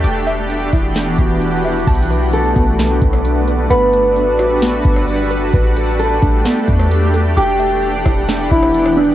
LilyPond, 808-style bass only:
\new Staff \with { instrumentName = "808-style bass" } { \clef bass \time 4/4 \key b \minor \tempo 4 = 131 e,,4. e,,4 e,,4. | b,,4. b,,4 b,,4. | g,,4~ g,,16 a,,4~ a,,16 g,,4. | a,,4. a,,8 r8 e,4. |
e,,4. e,,4 e,,4. | }